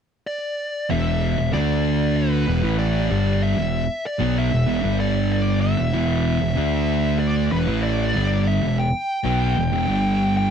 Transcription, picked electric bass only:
0.91 E1
1.38 E1
1.53 D2
2.48 E1
2.63 A1
3.10 G1
3.57 E1
4.20 B1
4.52 E1
4.68 E1
4.84 G1
5.79 E1
5.94 E1
6.41 E1
6.57 D2
7.52 E1
7.67 A1
8.16 G1
8.63 E1
9.24 B1
9.57 E1
9.72 E1
9.88 G1

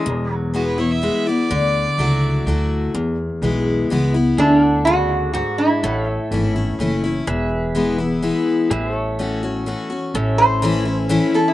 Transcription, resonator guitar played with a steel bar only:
Already playing: G#3
0.33 F#3
4.40 D4
4.85 F#4
5.33 F#4
5.58 E4
10.38 C5
11.35 A4
11.48 E4

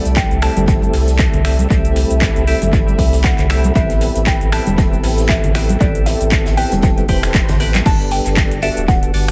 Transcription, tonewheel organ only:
Already playing: A3 C4 E4 G4 A4
0.42 A3 C4 E4 G4 A4
1.45 A3 C4 E4 G4 A4
1.70 A3 C4 E4 G4 A4
2.47 A3 C4 E4 G4 A4
3.50 A3 C4 E4 G4 A4
3.75 B3 C4 E4 G4 A4
4.52 B3 C4 E4 G4 A4
5.55 B3 C4 E4 G4 A4
5.80 B3 C4 E4 G4 A4
6.57 B3 C4 E4 G4 A4
7.09 C4 E4 G4 B4 C5
7.60 B3 C4 E4 G4 B4
7.86 B3 D4 G4 A4
8.62 B3 D4 F#4 G4 A4
9.14 B3 D4 F#4 G4 D5

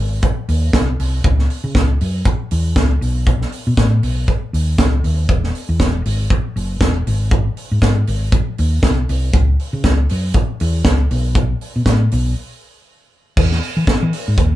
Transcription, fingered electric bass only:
Already playing: G#1
0.48 D#2
0.74 C2
1.00 C2
1.24 C#2
1.64 C#3
1.75 C#2
2.01 F#2
2.52 E2
2.76 C#2
3.01 B1
3.67 B2
3.78 A2
4.03 B1
4.53 D#2
4.79 C#2
5.04 D#2
5.29 E1
5.69 E2
5.80 E1
6.05 G#1
6.56 F#1
6.81 E1
7.07 G#1
7.71 G#2
7.82 G#2
8.08 G#1
8.59 D#2
8.83 C2
9.09 C2
9.34 C#2
9.73 C#3
9.84 C#2
10.11 F#2
10.61 E2
10.85 C#2
11.11 B1
11.76 B2
11.86 A2
12.12 B1
13.38 E2
13.77 E3
14.03 E3
14.28 G#2
14.38 D#2

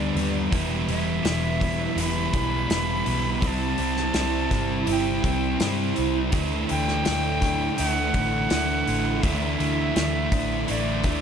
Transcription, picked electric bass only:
Already playing: D2
0.15 D#2
0.53 E1
0.88 E1
1.25 E1
1.97 E1
2.34 B1
2.70 E1
3.07 B1
3.42 C2
3.79 C2
4.15 C2
4.51 G1
4.88 G1
5.24 C2
5.61 G2
5.98 C2
6.33 D2
6.71 D2
7.07 D2
7.80 D2
8.14 A1
8.51 D2
8.88 A1
9.24 D2
9.60 D2
9.96 D2
10.32 A1
10.70 A1
11.04 D2

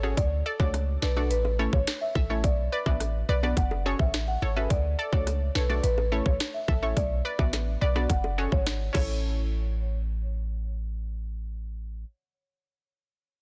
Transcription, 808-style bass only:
Already playing: G#1
0.17 D2
0.60 C#2
1.02 B1
1.31 A1
1.73 A1
2.15 A1
2.44 B1
2.86 A1
3.29 B1
3.57 F#1
3.99 A1
4.42 G#1
4.70 D2
5.13 C#2
5.55 B1
5.84 A1
6.26 A1
6.68 A1
6.97 B1
7.39 A1
7.82 B1
8.10 F#1
8.52 G#1
8.95 A1

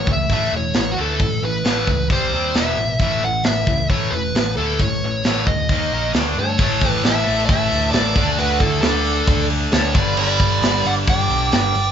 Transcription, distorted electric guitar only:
0.08 A2 E3
0.31 A2 E3 A3
0.53 A2 E3
0.75 A2 E3
0.97 A2 E3 A3
1.20 A2 E3
1.43 A2 E3
1.65 A2 E3 A3
1.89 A2 E3
2.11 C3 G3 C4
2.33 C3 G3 C4
2.56 E2 B2 E3
2.79 E2 B2
3.01 A2 E3 A3
3.23 A2 E3
3.45 A2 E3
3.68 A2 E3
3.90 A2 E3 A3
4.12 A2 E3
4.35 A2 E3
4.57 A2 E3 A3
4.80 A2 E3
5.04 A2 E3
5.25 A2 E3 A3
5.48 A2 E3
5.71 D#3 A#3 D#4
5.93 D#3 A#3 D#4
6.15 D3 A3 D4
6.38 D3 A3
6.59 A2 E3 A3
8.16 D3 A3 D4
9.94 G2 D3 G3

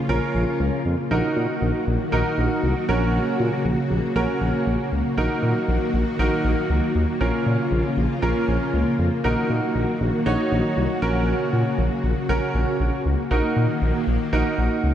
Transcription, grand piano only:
0.09 C#4 F4 A#4
1.11 D#4 F#4 A#4
2.12 D#4 F#4 A#4
2.89 C#4 F#4 A#4
4.16 C#4 F#4 A#4
5.18 D#4 F#4 A#4
6.19 D#4 F#4 A#4
7.21 C#4 F4 A#4
8.22 C#4 F4 A#4
9.24 D#4 F#4 A#4
10.26 D#4 F#4 C#5
11.02 C#4 F#4 A#4
12.29 C#4 F#4 A#4
13.31 D#4 F#4 A#4
14.33 D#4 F#4 A#4

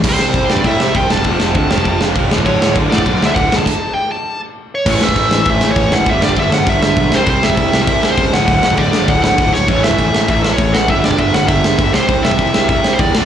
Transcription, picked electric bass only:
0.03 C2
0.21 C2
0.35 C2
0.51 G2
0.65 A2
0.81 C3
0.95 C2
1.10 E1
1.25 F1
1.41 F1
1.55 D2
1.72 F1
1.85 F1
2.02 F1
2.16 E1
2.31 D1
2.46 D1
2.62 D1
2.76 D1
2.90 A1
3.06 B1
3.20 D2
3.36 D1
3.49 A1
4.86 A1
5.02 A1
5.16 A1
5.31 A1
5.46 A1
5.76 A1
5.91 F#1
6.06 G1
6.22 G1
6.37 G1
6.51 G1
6.67 G1
6.97 B1
7.13 C2
7.27 C2
7.43 C2
7.57 C2
7.73 C2
7.87 C2
8.18 C#2
8.32 D1
8.48 D1
8.63 D1
8.78 D1
8.94 D1
9.08 D1
9.38 D1
9.54 D1
9.68 A1
9.85 A1
9.98 A1
10.14 A1
10.29 A1
10.59 A1
10.75 A1
10.89 G1
11.04 G1
11.18 G1
11.34 G1
11.48 G1
11.79 G1
11.94 C2
12.08 C2
12.25 C2
12.39 C2
12.54 C2
12.69 C2
12.99 E2
13.16 D1

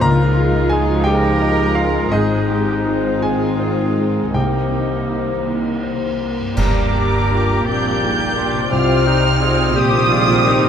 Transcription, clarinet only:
0.03 A#4
0.73 G#4
1.06 G4
1.76 F4
2.13 D#4
3.24 G#4
4.35 G4
6.58 G4
7.67 D4
8.02 D#4
8.37 F4
8.71 G4
9.06 D#4
9.41 G#4
9.76 G4

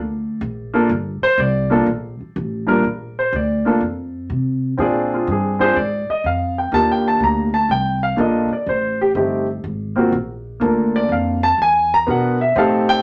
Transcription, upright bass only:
Already playing: D2
0.41 A#1
0.89 G1
1.22 muted upright bass stroke
1.38 C2
1.86 A#1
2.20 muted upright bass stroke
2.36 A1
2.84 A#1
3.33 D2
3.81 F2
4.30 C3
4.78 A#2
5.27 G2
5.76 G#2
6.09 muted upright bass stroke
6.24 F2
6.72 D#2
7.20 D2
7.69 C2
8.18 A#1
8.51 muted upright bass stroke
8.66 A1
9.15 G1
9.64 G#1
10.12 A#1
10.61 D2
11.09 F2
11.58 E2
12.07 B2
12.55 A2

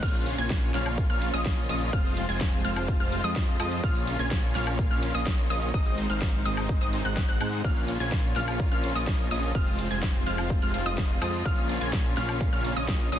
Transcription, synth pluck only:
0.03 F6
0.38 G#6
0.74 F6
1.10 F6
1.34 D#6
1.69 D#6
1.93 F6
2.29 G#6
2.64 F6
3.00 F6
3.24 D#6
3.60 D#6
3.84 F6
4.19 G#6
4.55 F6
4.91 F6
5.15 D#6
5.50 D#6
5.74 D#6
6.10 F6
6.45 D#6
6.81 D#6
7.05 F#6
7.29 F#6
7.41 F#6
7.65 F6
8.00 G#6
8.36 F6
8.72 F6
8.95 D#6
9.31 D#6
9.55 F6
9.91 G#6
10.26 F6
10.62 F6
10.86 D#6
11.22 D#6
11.46 F6
11.81 G#6
12.17 F6
12.53 F6
12.77 D#6
13.12 D#6

